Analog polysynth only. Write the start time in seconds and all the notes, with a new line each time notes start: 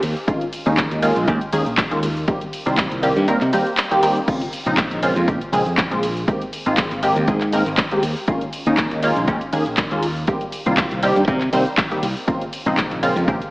0.27 D#3 G#3 A#3 C#4 F4
0.66 D#3 G#3 A#3 C#4 D#4
1.02 D#3 G#3 A#3 C#4 F4
1.27 D#3 G#3 A#3 C#4 G4
1.52 D#3 G#3 A#3 C#4 G#4
1.91 D#3 G#3 A#3 C#4 F4
2.27 D#3 G3 A#3 C4 G4
2.66 D#3 G3 A#3 C4 F4
3.02 D#3 G3 A#3 C4 G4
3.28 D#3 G3 A#3 C4 A#4
3.53 D#3 G3 A#3 C4 G4
3.91 D#3 G3 A#3 C4 G4
4.02 D#3 G3 A#3 C4 G4
4.28 C#3 G#3 A#3 C4 F4
4.66 C#3 G#3 A#3 C4 D#4
5.03 C#3 G#3 A#3 C4 F4
5.28 C#3 G#3 A#3 C4 G4
5.52 C#3 G#3 A#3 C4 G#4
5.91 C#3 G#3 A#3 C4 F4
6.27 D#3 G#3 A#3 C4 G4
6.66 D#3 G#3 A#3 C4 F4
7.03 D#3 G#3 A#3 C4 G4
7.28 D#3 G#3 A#3 C4 G#4
7.53 D#3 G#3 A#3 C4 A#4
7.92 D#3 G#3 A#3 C4 G4
8.28 D#3 G#3 A#3 C#4 F4
8.66 D#3 G#3 A#3 C#4 D#4
9.03 D#3 G#3 A#3 C#4 F4
9.28 D#3 G#3 A#3 C#4 G4
9.52 D#3 G#3 A#3 C#4 G#4
9.91 D#3 G#3 A#3 C#4 F4
10.28 D#3 G3 A#3 C4 G4
10.66 D#3 G3 A#3 C4 F4
11.03 D#3 G3 A#3 C4 G4
11.28 D#3 G3 A#3 C4 A#4
11.53 D#3 G3 A#3 C4 C5
11.91 D#3 G3 A#3 C4 G4
12.27 C#3 G#3 A#3 C4 F4
12.66 C#3 G#3 A#3 C4 D#4
13.02 C#3 G#3 A#3 C4 F4
13.27 C#3 G#3 A#3 C4 G4